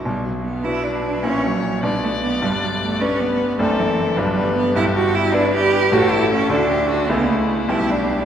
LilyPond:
<<
  \new Staff \with { instrumentName = "Violin" } { \time 6/8 \key b \minor \tempo 4. = 102 r4. b'4. | cis''4. d''4.~ | d''4. b'4. | a'4. b'4. |
\key a \mixolydian g'4. b'4. | a'4. a'8 g'8 fis'8 | e'4. g'4. | }
  \new Staff \with { instrumentName = "Cello" } { \time 6/8 \key b \minor g8 fis8 b8 e'8 d'4 | cis'8 fis4 g8 a8 b8 | g8 fis8 a8 cis'8 b4 | a8 e4 fis8 g8 b8 |
\key a \mixolydian e'8 fis'8 e'8 d'8 g'4 | fis'8 e'8 cis'8 d'4. | b8 a4 e'8 d'4 | }
  \new Staff \with { instrumentName = "Grand piano" } { \time 6/8 \key b \minor <b,, b,>4. <d' fis' b'>4. | <ais,, ais, cis' e' cis''>4. <b,, b, b d' d''>4. | <g,, g,>4. <b d' d''>4. | <fis,, fis, c' d' d''>4. <g,, g, b d' d''>4. |
\key a \mixolydian <g,, g,>4. <b e' d''>4. | <a,, a, a g' cis''>4. <d, d a fis' a'>4. | <cis, cis a e' a'>4. <b,, b, g g' b'>4. | }
>>